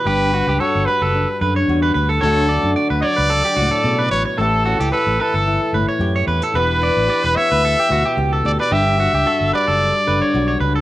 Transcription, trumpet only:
X:1
M:4/4
L:1/16
Q:"Swing 16ths" 1/4=111
K:Glyd
V:1 name="Trumpet"
B4 c2 B4 z6 | A4 z2 d8 c2 | A4 B2 A4 z6 | B6 e6 z2 d d |
e6 d8 z2 |]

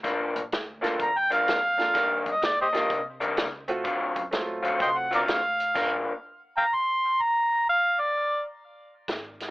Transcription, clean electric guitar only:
X:1
M:4/4
L:1/8
Q:"Swing" 1/4=126
K:Gm
V:1 name="Clean electric guitar" clef=bass
[G,,F,B,D] z2 [G,,F,B,D] z [G,,F,B,D] z2 | [E,G,B,D] z2 [E,G,B,D] z [E,G,B,D] z2 | [D,^F,C^E] z2 [D,F,CE] z [D,F,CE] z2 | [G,,F,B,D] z6 z |
z8 |]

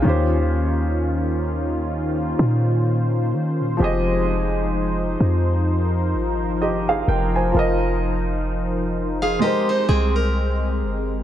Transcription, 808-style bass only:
X:1
M:4/4
L:1/16
Q:"Swing 16ths" 1/4=64
K:Fm
V:1 name="808-style bass" clef=bass
E,,8- E,,2 B,,4 E, B,, | F,,,6 F,,4 A,,,4 F,,,2 | F,,,8 z2 C,,4 G,,,2 |]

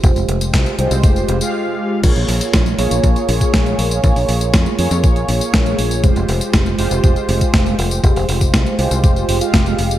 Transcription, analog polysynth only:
X:1
M:4/4
L:1/16
Q:1/4=120
K:Bbdor
V:1 name="Analog polysynth"
[A,FGc]6 [A,FGc]4- [A,FGc] [A,FGf]4- [A,FGf] | [B,FAd]6 [B,FAd]8- [B,FAd]2 | [B,FAd]6 [B,FAd]8- [B,FAd]2 | [A,FGc]6 [A,FGc]8- [A,FGc]2 |
[A,FGc]6 [A,FGc]4- [A,FGc] [A,FGf]4- [A,FGf] |]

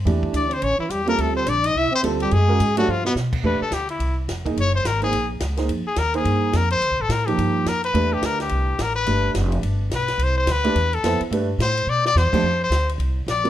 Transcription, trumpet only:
X:1
M:4/4
L:1/8
Q:"Swing" 1/4=213
K:Dm
V:1 name="Trumpet"
z2 d c _d E G B | A c d _e =e c z G | _A3 _G F =B, z2 | [K:Gmix] B A G E2 z3 |
^c =c ^A ^G2 z3 | z _A _B A3 B c- | c A _B G3 ^A =B- | B G _B G3 B =B- |
B2 z4 B2 | c c B3 A2 z | z2 c2 d d c2- | [K:Cmix] c c2 z3 d2 |]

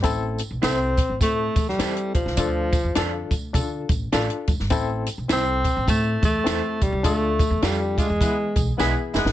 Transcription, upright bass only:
X:1
M:4/4
L:1/16
Q:"Swing" 1/4=103
K:Am
V:1 name="Upright bass" clef=bass
A,,,3 B,,, C,,3 A,,, A,,2 E,,2 E,, z B,,, C,, | D,,3 E,, F,,2 D,,2 D,2 A,,,2 A,,, z F,,, G,,, | A,,,3 B,,, C,,3 A,,, A,,2 E,,2 E,, z B,,, C,, | D,,3 E,, F,,3 E,, E,2 B,,,2 B,,, z F,,, ^G,,, |]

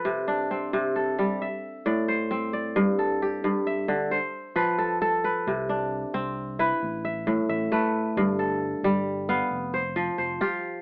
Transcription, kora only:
X:1
M:12/8
L:1/8
Q:3/8=89
K:C
V:1 name="Kora"
B D C2 A2 e2 d c2 d- | d A G2 e2 c2 B A2 B- | B D3 z B2 e2 e B2- | B A3 z f2 c2 c G2 |]
V:2 name="Kora" clef=bass
C,2 z C,2 G, z2 A,,2 C2 | G,,2 z G,,2 D, z2 F,2 A2 | C,2 z C2 E z2 A,,2 A,2 | G,,2 z G,2 B, z2 F,2 F2 |]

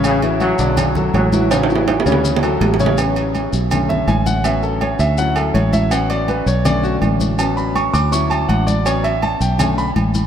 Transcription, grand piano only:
X:1
M:4/4
L:1/8
Q:1/4=163
K:A
V:1 name="Grand piano"
[C,Cc] [E,EF]2 [D,Dd]2 [F,FA]2 [E,EF] | [C,Cc] [E,EF]2 [C,Cc]2 [F,FA]2 [C,Cc] | z4 z e g f | e A c e f A c e |
f d B c d F z2 | a b c' d' c' a f d | c e a =g ^g b z2 |]
V:2 name="Grand piano"
z8 | z8 | [F,B,C]3 z [D,A,C]4 | [F,B,C]4 [F,CE]4 |
[F,B,C]3 z [D,A,C]4 | [F,B,C]4 [F,CE]3 z | [F,B,C] z3 [D,A,C] z3 |]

